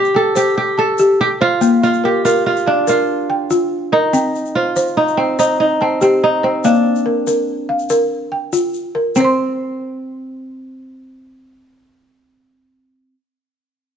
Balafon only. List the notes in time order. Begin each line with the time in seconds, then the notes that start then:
Already playing: C5
0.15 G5
0.35 C5
0.78 A5
0.99 G4
1.41 C5
1.61 A#3 F5
2.04 A#4
2.25 A#4
2.67 F5
2.87 A#4
3.30 G5
3.51 F4
3.92 A#4
4.13 C4 G5
4.56 C5
4.76 C5
5.18 G5
5.39 C5
5.81 A5
6.01 G4
6.43 C5
6.65 A#3 F5
7.06 A#4
7.27 A#4
7.69 F5
7.90 A#4
8.32 G5
8.53 F4
8.95 A#4
9.17 C4 C5
9.24 C6